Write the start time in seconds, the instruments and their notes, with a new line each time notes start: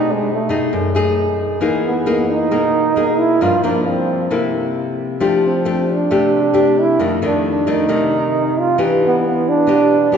Already playing: nylon-string guitar B2 A3 D#4 G#4, trombone D#4
0.12 trombone G#3
0.33 trombone A3
0.49 nylon-string guitar A3 D#4 G#4
0.73 nylon-string guitar F#2
0.95 nylon-string guitar A3 D#4 G#4
1.61 nylon-string guitar E3 A#3 D#4 G#4
1.87 trombone B3
2.06 nylon-string guitar A#3 D#4 G#4, trombone B3
2.30 trombone D#4
2.51 nylon-string guitar B2 A#3 D#4 G#4
2.96 nylon-string guitar A#3 D#4 G#4
3.19 trombone E4
3.41 nylon-string guitar G2 F3 A#3 D4, trombone F4
3.63 nylon-string guitar F3 A#3 D4, trombone A#3
3.88 trombone C4
4.31 nylon-string guitar C3 A#3 E4 A4
5.20 nylon-string guitar F3 A3 D4 G4
5.46 trombone C4
5.65 nylon-string guitar A3 D4 G4
5.71 trombone C4
5.92 trombone D4
6.11 nylon-string guitar C3 A3 D4 G4
6.53 nylon-string guitar A3 D4 G4
6.80 trombone E4
6.99 nylon-string guitar F2 D#3 A3 D4
7.22 nylon-string guitar D#3 A3 D4
7.26 trombone D4
7.50 trombone D4
7.67 nylon-string guitar D#3 A3 D4
7.71 trombone D#4
7.89 nylon-string guitar C3 D#3 A3
8.60 trombone F4
8.78 nylon-string guitar E3 B3 D4 G4
9.06 trombone B3
9.27 trombone B3
9.49 trombone D4
9.67 nylon-string guitar B2 B3 D4 G4
10.12 nylon-string guitar B3 D4 G4